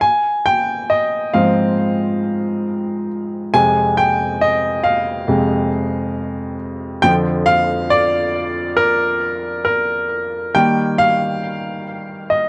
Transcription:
0.01 G#5
0.46 G5
0.90 D#5
1.33 G#2 F3 C4 F5
3.54 F2 C3 G#3 G#5
3.97 G5
4.41 D#5
4.84 F5
5.28 F2 C3 G#3
7.02 F2 D3 F3 G5
7.46 F5
7.90 D5
8.77 A#4
9.65 A#4
10.55 D#3 G3 A#3 G5
10.98 F5
12.30 D#5

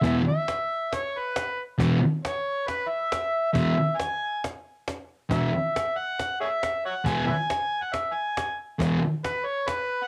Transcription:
0.02 E2 B2 E3 E5, cajon bass, cajon slap
0.29 E5
0.48 cajon slap
0.93 C#5, cajon slap
1.19 B4
1.36 cajon slap
1.78 E2 B2 E3, cajon bass, cajon slap
2.25 C#5, cajon slap
2.67 B4, cajon slap
2.89 E5
3.12 cajon slap
3.53 E2 B2 E3 E5, cajon bass, cajon slap
3.97 G#5, cajon slap
4.44 cajon slap
4.88 cajon slap
5.29 E2 B2 E3 E5, cajon bass, cajon slap
5.76 cajon slap
5.97 F#5
6.19 cajon slap
6.41 G#4 C#5 E5
6.63 cajon slap
6.86 C#5 F#5
7.05 E2 B2 E3 G#5, cajon bass, cajon slap
7.26 B4 E5 G#5
7.50 cajon slap
7.83 F#5
7.93 E5, cajon slap
8.14 G#5
8.37 cajon slap
8.79 E2 B2 E3, cajon bass, cajon slap
9.24 B4, cajon slap
9.46 C#5
9.68 B4, cajon slap
10.04 F#5

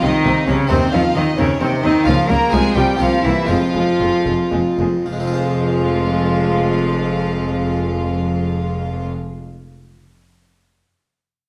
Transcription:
Already playing: C4 D#4
0.02 C2 C3 D#3 C4 D#4 D#5
0.25 C2 C3 C4
0.47 C2 C3 C#3 C4 C#4 C#5
0.67 D#2 C3 D#3 C4 D#4 C5
0.92 D#2 D#3 F3 C4 F4 F5
1.15 D#2 D#3 C4 D#4 D#5
1.38 D#2 C#3 D#3 C4 C#4 C#5
1.61 D#2 C3 D#3 C4 C5
1.83 D#2 D#3 C4 D#4 D#5
2.04 C#2 C#3 F3 A#3 F4 F5
2.29 C#2 C#3 A#3 A#4 A#5
2.50 C2 C3 F3 G#3 C4 F4 G#4 G#5
2.76 C2 C3 F3 G3 G4 G5
2.97 C2 C3 F3 A#3 C4 F4 G4 F5
3.01 C3
3.24 C2 C3 E3 A#3 E4 E5
3.45 G#3 C4 F4
3.49 F1 F2 F3 G#3 F4 F5
3.75 F1 F2 G#3
4.00 F1 F2 G#3
4.26 F1 F2 G#3
4.52 F1 F2 G#3
4.79 F1 F2 G#3
5.06 F1 F2 F3 G#3 F4 F5
5.13 G#3
5.20 C4
5.27 F4
5.34 C5

